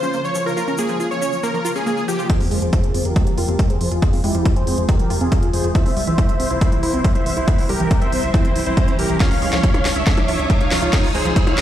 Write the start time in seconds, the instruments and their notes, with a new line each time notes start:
Already playing: supersaw synth C5
0.03 synth pluck C#4, shaker
0.13 synth pluck A#3, shaker
0.25 supersaw synth C#5, shaker
0.35 synth pluck F3, shaker
0.46 synth pluck F4, supersaw synth A#4, shaker
0.57 synth pluck F4, shaker
0.68 synth pluck C#4, shaker
0.78 synth pluck A#3, supersaw synth G#4, shaker
0.89 synth pluck F3, shaker
1.00 synth pluck F4, shaker
1.11 supersaw synth C#5, shaker
1.22 synth pluck C#4, shaker
1.33 shaker
1.43 synth pluck A#3, supersaw synth A#4, shaker
1.54 synth pluck F3, shaker
1.65 synth pluck F4, shaker
1.75 synth pluck C#4, supersaw synth G#4, shaker
1.86 synth pluck A#3, shaker
1.97 shaker
2.08 synth pluck F3, supersaw synth G4, shaker
2.19 synth pluck F4, shaker
2.30 synth pluck F4, supersaw synth G#4 C5, kick, closed hi-hat, riser
2.40 analog synth bass F2, synth pluck C4, open hi-hat
2.51 analog synth bass F2, synth pluck G#3, open hi-hat
2.62 analog synth bass F2, synth pluck F3, supersaw synth G#4 C5, closed hi-hat
2.73 synth pluck F4, kick, closed hi-hat
2.84 analog synth bass F2, supersaw synth G#4 C5, closed hi-hat
2.94 analog synth bass F2, synth pluck C4, open hi-hat
3.05 analog synth bass F2, supersaw synth G4 A#4, closed hi-hat
3.16 synth pluck G#3, kick, closed hi-hat
3.27 analog synth bass C2, synth pluck F3, closed hi-hat
3.37 analog synth bass F2, synth pluck F4, supersaw synth G4 A#4, open hi-hat
3.48 analog synth bass F2, synth pluck C4, closed hi-hat
3.59 synth pluck G#3, kick, closed hi-hat
3.70 analog synth bass F2, supersaw synth G#4 C5, closed hi-hat
3.81 analog synth bass F2, synth pluck F3, open hi-hat
3.91 analog synth bass F2, synth pluck F4, supersaw synth F4 G#4, closed hi-hat
4.02 synth pluck F4, kick, closed hi-hat
4.13 analog synth bass F2, synth pluck C4, open hi-hat
4.24 analog synth bass F2, synth pluck G#3, supersaw synth E4 G4, open hi-hat
4.35 analog synth bass F2, synth pluck F3, closed hi-hat
4.45 synth pluck F4, kick, closed hi-hat
4.56 analog synth bass F2, supersaw synth G#4 C5, closed hi-hat
4.67 analog synth bass F2, synth pluck C4, open hi-hat
4.78 analog synth bass F2, closed hi-hat
4.89 synth pluck G#3, supersaw synth G4 A#4, kick, closed hi-hat
4.99 analog synth bass C2, synth pluck F3, closed hi-hat
5.10 analog synth bass F2, synth pluck F4, open hi-hat
5.21 analog synth bass F2, synth pluck C4, supersaw synth F4 G#4, closed hi-hat
5.32 synth pluck G#3, kick, closed hi-hat
5.43 analog synth bass F2, closed hi-hat
5.53 analog synth bass F2, synth pluck F3, supersaw synth G#4 C5, open hi-hat
5.64 analog synth bass F2, synth pluck F4, closed hi-hat
5.75 synth pluck E4, supersaw synth C5 E5, kick, closed hi-hat
5.86 analog synth bass C2, synth pluck C4, open hi-hat
5.97 analog synth bass C2, synth pluck G3, open hi-hat
6.07 analog synth bass C2, synth pluck E3, supersaw synth C5 E5, closed hi-hat
6.18 synth pluck E4, kick, closed hi-hat
6.29 analog synth bass C2, supersaw synth C5 E5, closed hi-hat
6.40 analog synth bass C2, synth pluck C4, open hi-hat
6.50 analog synth bass C2, supersaw synth E4 C5, closed hi-hat
6.61 synth pluck G3, kick, closed hi-hat
6.72 analog synth bass A#1, synth pluck E3, closed hi-hat
6.83 analog synth bass C2, supersaw synth E4 C5, synth pluck E4, open hi-hat
6.94 analog synth bass C2, synth pluck C4, closed hi-hat
7.04 synth pluck G3, kick, closed hi-hat
7.15 analog synth bass C2, supersaw synth C5 E5, closed hi-hat
7.26 analog synth bass C2, synth pluck E3, open hi-hat
7.37 analog synth bass C2, supersaw synth E4 C5, synth pluck E4, closed hi-hat
7.48 synth pluck E4, kick, closed hi-hat
7.58 analog synth bass C2, synth pluck C4, open hi-hat
7.69 analog synth bass C2, synth pluck G3, supersaw synth G4 A#4, open hi-hat
7.80 analog synth bass C2, synth pluck E3, closed hi-hat
7.91 synth pluck E4, kick, closed hi-hat
8.02 analog synth bass C2, supersaw synth C5 E5, closed hi-hat
8.12 analog synth bass C2, synth pluck C4, open hi-hat
8.23 analog synth bass C2, closed hi-hat
8.34 synth pluck G3, supersaw synth E4 C5, kick, closed hi-hat
8.45 analog synth bass G1, synth pluck E3, closed hi-hat
8.56 analog synth bass C2, synth pluck E3, open hi-hat
8.66 analog synth bass C2, synth pluck E4, supersaw synth E4 C5
8.77 synth pluck C4, kick, closed hi-hat
8.88 analog synth bass C2, synth pluck E3, closed hi-hat
8.99 analog synth bass C2, synth pluck E3, supersaw synth G4 A#4, open hi-hat
9.09 analog synth bass C2, synth pluck E3, closed hi-hat
9.20 synth pluck F4, supersaw synth C#5 F5, kick, snare, closed hi-hat
9.31 analog synth bass C#2, synth pluck C#4, open hi-hat
9.42 analog synth bass C#2, synth pluck G#3, open hi-hat
9.53 analog synth bass C#2, synth pluck F3, supersaw synth C#5 F5, snare, closed hi-hat
9.63 synth pluck F4, kick, closed hi-hat
9.74 analog synth bass C#2, supersaw synth C#5 F5, closed hi-hat, percussion blips
9.85 analog synth bass C#2, synth pluck C#4, snare, open hi-hat
9.96 analog synth bass C#2, supersaw synth C#5 E5, closed hi-hat
10.07 synth pluck G#3, kick, snare, closed hi-hat
10.17 analog synth bass G#1, synth pluck F3, closed hi-hat, percussion blips
10.28 analog synth bass C#2, synth pluck F4, supersaw synth C#5 E5, open hi-hat
10.39 analog synth bass C#2, synth pluck C#4, closed hi-hat
10.50 synth pluck G#3, kick, closed hi-hat
10.60 analog synth bass C#2, supersaw synth C#5 F5, closed hi-hat
10.71 analog synth bass C#2, synth pluck F3, snare, open hi-hat
10.82 analog synth bass C#2, supersaw synth F4 C#5, synth pluck F4, closed hi-hat
10.93 synth pluck F4, kick, snare, closed hi-hat
11.04 analog synth bass C#2, synth pluck C#4, open hi-hat
11.14 analog synth bass C#2, synth pluck G#3, supersaw synth G#4 C5, open hi-hat
11.25 analog synth bass C#2, synth pluck F3, closed hi-hat
11.36 synth pluck F4, kick, closed hi-hat
11.47 analog synth bass C#2, supersaw synth C#5 F5, closed hi-hat, percussion blips
11.58 analog synth bass C#2, synth pluck C#4, snare, open hi-hat